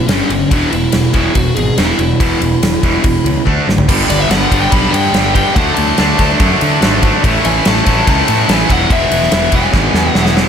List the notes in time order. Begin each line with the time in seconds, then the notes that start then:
0.08 G1 G2 D3 G3 C#4, snare, ride
0.29 G1 G2 D3 C#4, ride
0.51 E1 E2 B2 E3 D4, kick, ride
0.71 E1 E2 B2 E4, ride
0.92 E1 E2 B2, snare, ride
1.13 E1 E2 B2 E3 E4, kick, ride
1.34 E1 E2 B2 F#4, kick, ride
1.56 G#1 E2 B2 G#4, ride
1.78 E1 E2 B2 E3 E4, snare, ride
1.99 E1 E2 B2, ride
2.20 E1 E2 B2 E3, kick, ride
2.41 E1 E2 B2, ride
2.63 E1 E2 B2, snare, ride
2.83 E1 E2 B2 E3, kick, ride
3.03 E1 E2 B2, kick, ride
3.24 C#2 E2 B2, ride
3.45 D2 D3 A3 D4, kick
3.67 G#1 D3 A3, snare
3.78 floor tom
3.88 G1 G2 D3 G3 B3 D4, kick, crash
4.10 G1 D5, ride
4.20 E5
4.31 G1 G2 D3 G3 F#5, snare, ride
4.51 G1 G2 D3 G3 B3 D4, kick, ride
4.61 G5
4.72 B1 G2 D3 G3 B5, kick, ride
4.91 G2 G5, ride
5.13 G1 G2 D3 G3, snare, ride
5.35 G2 D3 G3 G5, kick, ride
5.54 D2 D3 F#3 A3 D4 F#5, kick, ride
5.74 D2 A5, ride
5.97 D2 D3 A3 D4, snare, ride
6.18 D2 D3 F#3 A3 D4, kick, ride
6.23 D3
6.40 F#2 D3 A3 D4, kick, ride
6.61 D3, ride
6.81 G#1 D3 A3 D4, snare, ride
7.03 D3 A3 D4, kick, ride
7.24 A1 A2 E3 A3 C#4 E4, kick, ride
7.45 A1 G#5, ride
7.65 A1 A2 E3 A3 A5, snare, ride
7.85 A1 A2 E3 A3 C#4 E4, kick, ride
8.07 C#2 A2 E3 A3 A5, kick, ride
8.28 A2, ride
8.49 A1 A2 E3 A3, snare, ride
8.53 G#5
8.68 E1 E2 B2 E3 G#3 B3, kick, ride
8.72 E4 F#5
8.90 E1 E2 B2 E3 E5, kick, ride
9.12 E1, ride
9.23 snare
9.32 E1 E2 B2 E3 G#3 B3 E4, snare, ride
9.52 E1 E2 B2 E3 G#5, kick, ride
9.73 G#1 E2 B2 E3, kick, snare
9.94 E2, snare
10.12 E1 E2 B2 E3 F#5, snare
10.26 snare
10.37 E2 B2 E3, snare